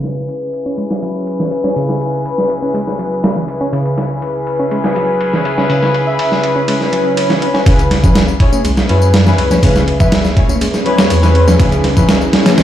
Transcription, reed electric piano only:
0.00 0.27 C#3 medium
0.66 0.76 C#4 medium
0.78 0.84 G#3 medium
1.02 1.38 F#3 medium
1.39 1.49 E3 medium
1.64 1.74 C#4 loud
1.76 2.24 C#3 medium
2.63 2.72 C#4 medium
2.74 2.81 G#3 medium
2.99 3.35 F#3 medium
3.36 3.46 E3 medium
3.61 3.71 C#4 loud
3.73 4.21 C#3 medium
4.60 4.69 C#4 medium
4.72 4.78 G#3 medium
4.96 5.32 F#3 medium
5.33 5.43 E3 medium
5.58 5.67 C#4 loud
5.70 6.18 C#3 loud
6.56 6.66 C#4 medium
6.68 6.74 G#3 medium
6.93 7.29 F#3 medium
7.30 7.39 E3 medium
7.54 7.64 C#4 loud
7.66 8.14 C#3 loud
8.53 8.62 C#4 medium
8.65 8.71 G#3 medium
8.89 9.25 F#3 medium
9.26 9.36 E3 medium
9.51 9.61 C#4 loud
9.63 10.11 C#3 loud
10.49 10.59 C#4 medium
10.61 10.68 G#3 medium
10.86 11.22 F#3 medium
11.23 11.33 E3 medium
11.48 11.57 C#4 loud
11.60 12.08 C#3 loud
12.46 12.56 C#4 medium
12.58 12.63 G#3 medium

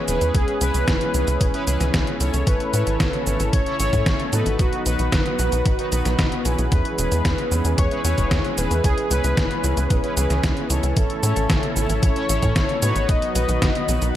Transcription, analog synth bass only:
0.08 0.19 E1 medium
0.21 0.32 E2 medium
0.35 0.45 C#2 loud
0.61 0.72 C#2 medium
0.74 0.85 C#2 medium
0.88 0.98 G#1 loud
1.14 1.25 C#2 medium
1.27 1.38 C#2 medium
1.41 1.51 B1 loud
1.67 1.78 C#2 medium
1.81 1.91 C#2 medium
1.94 2.05 C#2 loud
2.20 2.31 C#2 medium
2.34 2.44 C#2 medium
2.47 2.58 A1 loud
2.74 2.84 A2 medium
2.87 2.97 A1 medium
3.00 3.11 A1 loud
3.27 3.37 A1 medium
3.40 3.51 A1 medium
3.53 3.64 A1 loud
3.80 3.90 A1 medium
3.93 4.04 A2 medium
4.06 4.17 A1 loud
4.33 4.43 A2 medium
4.46 4.57 A1 medium
4.59 4.70 B1 loud
4.86 4.97 B1 medium
4.99 5.10 B1 medium
5.12 5.23 F#1 loud
5.39 5.50 B1 loud
5.52 5.63 B1 medium
5.66 5.76 A1 loud
5.92 6.03 B1 medium
6.05 6.16 B1 medium
6.19 6.29 B1 loud
6.45 6.56 B1 medium
6.58 6.69 B1 medium
6.72 6.82 E2 loud
6.98 7.09 E1 medium
7.12 7.22 E2 medium
7.25 7.36 E2 loud
7.51 7.62 E2 medium
7.65 7.75 E2 medium
7.78 7.89 E2 loud
8.04 8.15 E2 medium
8.18 8.29 E1 medium
8.31 8.42 E2 loud
8.58 8.68 E1 medium
8.71 8.82 E2 medium
8.84 8.95 C#2 loud
9.11 9.21 C#2 medium
9.24 9.35 C#2 medium
9.37 9.48 G#1 loud
9.64 9.74 C#2 medium
9.77 9.88 C#2 medium
9.90 10.01 B1 loud
10.17 10.28 C#2 loud
10.30 10.41 C#2 medium
10.43 10.54 C#2 loud
10.70 10.81 C#2 medium
10.83 10.94 C#2 medium
10.97 11.07 A1 loud
11.23 11.34 A2 loud
11.36 11.47 A1 medium
11.50 11.60 A1 loud
11.76 11.87 A1 loud
11.89 12.00 A1 medium
12.03 12.13 A1 loud
12.29 12.40 A1 medium
12.43 12.53 A2 medium
12.56 12.67 A1 loud
12.82 12.93 A2 medium
12.96 13.06 A1 medium
13.09 13.20 B1 loud
13.35 13.46 B1 medium
13.49 13.59 B1 medium
13.62 13.73 F#1 loud
13.88 13.99 B1 medium
14.02 14.12 B1 medium

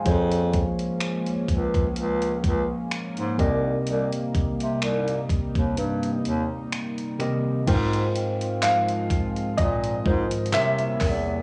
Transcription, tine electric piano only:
0.00 0.30 F5 medium
0.00 0.29 G#5 medium
0.05 1.30 F3 medium
0.05 1.30 F4 medium
0.05 1.30 G#4 medium
0.05 1.31 C5 medium
0.05 1.31 C#5 medium
3.38 4.92 C3 medium
3.38 4.92 C4 medium
3.38 4.92 G4 medium
3.38 4.93 A#4 medium
3.38 4.93 D#5 loud
7.19 7.51 C3 medium
7.19 7.52 C4 medium
7.19 7.52 G4 medium
7.19 7.52 A#4 medium
7.19 7.53 D#5 medium
7.66 8.91 G#2 medium
7.66 8.92 G#3 medium
7.66 8.92 F4 medium
7.66 8.92 A#4 medium
7.66 8.93 C5 loud
10.05 10.53 G#2 medium
10.05 10.53 G#3 medium
10.05 10.54 F4 medium
10.05 10.53 A#4 medium
10.05 10.54 C5 medium
10.52 11.31 C3 medium
10.52 11.31 G3 medium
10.52 11.31 E4 medium
10.52 11.32 A#4 medium
10.52 11.32 C#5 medium

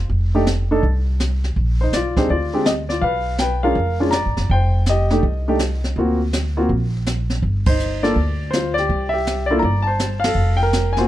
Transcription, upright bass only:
0.09 0.79 F1 medium
0.83 1.52 C2 medium
1.56 1.90 A#1 medium
1.92 2.26 B1 medium
2.29 2.99 D2 medium
3.02 3.72 B1 medium
3.75 4.21 F1 medium
4.26 4.36 G#1 medium
4.37 4.48 F#1 medium
4.50 5.19 F1 medium
5.23 5.92 C2 medium
5.96 6.66 D2 medium
6.69 7.39 A#1 medium
7.43 8.12 G1 medium
8.16 8.86 D2 medium
8.90 9.59 C2 medium
9.62 10.32 G1 medium
10.35 11.05 F1 medium

